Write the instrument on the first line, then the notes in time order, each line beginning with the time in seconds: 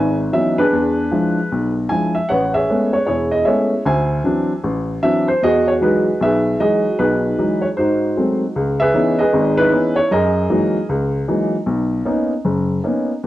upright piano
Already playing: G#1 G#2 B4 D#5 E5 G#5
0.33 E3 F#3 B3 C#4 D#4 E5
0.59 D4 G#4 B4
0.73 E2
1.12 F3 G#3 D4 E4
1.52 B1
1.89 F3 G#3 D4 E4 G#5
2.14 E5
2.29 A1 B4 C#5 F#5
2.54 G#4 C#5 E5
2.70 G#3 A3 B3 C#4
2.93 C#5
3.07 E1 E4 G#4 C#5
3.31 D#5
3.45 G#3 A3 B3 C#4 G#4 C#5 E5
3.85 D2 C5 E5 G#5
4.24 E3 F#3 C4 D4
4.64 A1
5.03 E3 F#3 C4 D4 E5
5.28 C5
5.42 E2 F#4 G#4 D#5
5.68 C#5
5.81 E3 F#3 G#3 D#4 G#4 B4 D#5
6.21 B1 G#4 B4 E5
6.60 E3 F#3 G#3 D#4 F#4 G#4 D#5
6.99 B1 D#4 G#4 B4
7.38 E3 F#3 G#3 D#4
7.62 C#5
7.77 G#2 D#4 F#4 C5
8.17 F#3 G#3 A3 C4
8.56 C#2
8.80 G#4 B4 E5
8.94 E3 B3 C#4 D#4
9.19 G#4 B4 D#5
9.33 G#1 G#2
9.57 D#4 E4 B4
9.72 E3 B3 C#4 D#4
9.96 C#5
10.11 F#2 G#4 A#4 D#5
10.50 E3 F#3 G#3 A#3 D#4
10.89 C#2
11.28 E3 F#3 G#3 A#3 D#4
11.66 B1
12.06 A#3 B3 C#4 D#4
12.45 F#1
12.84 A#3 B3 C#4 D#4
13.23 E2